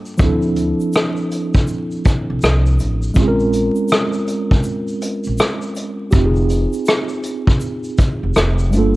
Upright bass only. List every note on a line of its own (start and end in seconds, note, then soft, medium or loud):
0.20 0.71 D2 loud
2.30 2.41 C2 medium
2.43 2.81 C2 loud
2.81 3.11 A1 medium
3.16 3.68 A#1 medium
5.27 5.37 A#1 medium
6.13 6.64 F1 loud
8.23 8.34 F1 medium
8.37 8.73 F1 medium
8.73 8.96 G1 medium